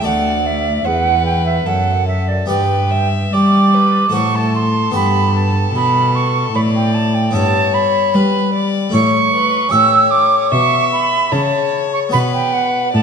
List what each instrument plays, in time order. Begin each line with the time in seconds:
0.01 harpsichord A3 A4 D5, violin D5
0.05 harpsichord D2, cello D2, flute F#5
0.46 flute E5
0.85 cello E2, harpsichord E2, violin B4, flute F#5
1.25 flute G5
1.46 flute E5
1.66 harpsichord F#2, cello F#2, violin A4, flute F#5
2.07 flute E5
2.28 flute D5
2.46 harpsichord B3 G4 D5, flute G5
2.50 harpsichord G2, cello G2, violin B4
2.91 violin E5
3.33 cello G3, harpsichord G3, violin D5, flute D6
3.74 violin B4
4.09 harpsichord A3 F#4 C5, violin A4
4.14 harpsichord A2, cello A2, flute C#6
4.35 flute A5
4.55 flute C6
4.91 cello G2, harpsichord B3 G4 D5
4.95 harpsichord G2, flute B5
5.35 flute A5
5.75 cello B2, harpsichord B2, flute B5
6.15 flute C#6
6.54 cello A2, harpsichord A2, violin D5, flute B5
6.76 flute G5
6.94 flute A5
7.14 flute G5
7.31 cello G2, harpsichord B3 E4 E5, violin C#5, flute A5
7.35 harpsichord G2
7.74 flute B5
8.14 harpsichord G3, cello G3, violin B4
8.54 violin D5
8.89 harpsichord A3 E4 E5, flute C#6
8.94 cello A2, harpsichord A2, violin C#5
9.34 violin B4
9.69 cello A2, harpsichord C#4 G4 E5, violin C#5, flute E6
9.73 harpsichord A2
10.11 flute D6
10.51 cello B2, harpsichord B2, violin E5, flute C#6
10.92 flute B5
11.32 harpsichord C#3, cello C#3, violin C#5, flute A5
11.93 flute C#6
12.09 harpsichord B3 F#4 D5, flute B5
12.13 harpsichord B2, cello B2, violin B4
12.33 flute G5
12.53 flute F#5
12.93 cello A2, harpsichord A2, violin D5, flute A5